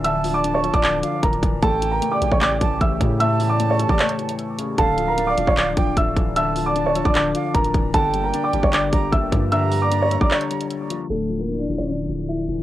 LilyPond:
<<
  \new Staff \with { instrumentName = "Flute" } { \time 4/4 \key d \minor \tempo 4 = 152 a''2~ a''8 f''8 r4 | g''2~ g''8 a''8 r4 | a''2. r4 | f''2~ f''8 g''8 r4 |
a''2~ a''8 f''8 r4 | g''2~ g''8 bes''8 r4 | bes''2. r4 | r1 | }
  \new Staff \with { instrumentName = "Grand piano" } { \time 4/4 \key d \minor <e'' e'''>8. <d'' d'''>8 <cis'' cis'''>8 <d'' d'''>16 <d'' d'''>4 <bes' bes''>4 | <a' a''>8. <bes' bes''>8 <d'' d'''>8 <cis'' cis'''>16 <d'' d'''>4 <e'' e'''>4 | <e'' e'''>8. <d'' d'''>8 <cis'' cis'''>8 <d'' d'''>16 <cis'' cis'''>2 | <a' a''>8. <bes' bes''>8 <d'' d'''>8 <cis'' cis'''>16 <d'' d'''>4 <e'' e'''>4 |
<e'' e'''>8. <d'' d'''>8 <cis'' cis'''>8 <d'' d'''>16 <d'' d'''>4 <bes' bes''>4 | <a' a''>8. <bes' bes''>8 <d'' d'''>8 <cis'' cis'''>16 <d'' d'''>4 <e'' e'''>4 | <e'' e'''>8. <d'' d'''>8 <cis'' cis'''>8 <d'' d'''>16 <cis'' cis'''>2 | <a a'>8. <bes bes'>8 <d' d''>8 <cis' cis''>16 <d' d''>4 <e' e''>4 | }
  \new Staff \with { instrumentName = "Analog synth pad" } { \time 4/4 \key d \minor <d d'>1 | <cis a g'>1~ | <cis a g'>1 | <d d'>1~ |
<d d'>1 | <bes g'>1~ | <bes g'>1 | <d e'>1 | }
  \new Staff \with { instrumentName = "Grand piano" } { \clef bass \time 4/4 \key d \minor <d e f>8 f8 d'8 f8 d8 f4 e8 | a,8 e8 a8 e8 a,8 e4 cis8 | a,8 e8 a8 e8 a,8 e4 cis8 | d8 f8 d'8 f8 d8 f4 e8 |
d8 f8 d'8 f8 d8 f4 e8 | d8 g8 d'8 g8 d8 g4 f8 | d8 g8 d'8 g8 d8 g4 f8 | d8 f8 d'8 f8 d8 f4 e8 | }
  \new Staff \with { instrumentName = "808-style bass" } { \clef bass \time 4/4 \key d \minor d,,4.~ d,,16 d,,8. r8 d,,8 d,,8 | a,,4 r8 a,,16 a,,8. a,,8 a,,8 a,8~ | a,4.~ a,16 a,,16 r2 | d,,4. d,,16 d,,8. d,,8 d,,8 d,,8~ |
d,,4.~ d,,16 d,,8. r8 d,,8 d,,8 | g,,4 r8 g,,16 g,,8. g,,8 g,,8 g,8~ | g,4.~ g,16 g,,16 r2 | d,,4. d,,16 d,,8. d,,4 d,,8 | }
  \new DrumStaff \with { instrumentName = "Drums" } \drummode { \time 4/4 hh8 hho8 hh8 hh16 <hh bd>16 <hc hh>8 hh8 <hh bd>16 hh16 <hh bd>8 | <hh bd>8 hh8 hh8 hh16 bd16 <hc hh>8 <hh bd>8 <hh bd>8 <hh bd>8 | hh8 hho8 hh8 hh16 bd16 <hc hh>16 hh16 hh16 hh16 hh8 hh8 | <hh bd>8 hh8 hh8 hh16 bd16 <hc hh>8 <hh bd>8 <hh bd>8 <hh bd>8 |
hh8 hho8 hh8 hh16 <hh bd>16 <hc hh>8 hh8 <hh bd>16 hh16 <hh bd>8 | <hh bd>8 hh8 hh8 hh16 bd16 <hc hh>8 <hh bd>8 <hh bd>8 <hh bd>8 | hh8 hho8 hh8 hh16 bd16 <hc hh>16 hh16 hh16 hh16 hh8 hh8 | r4 r4 r4 r4 | }
>>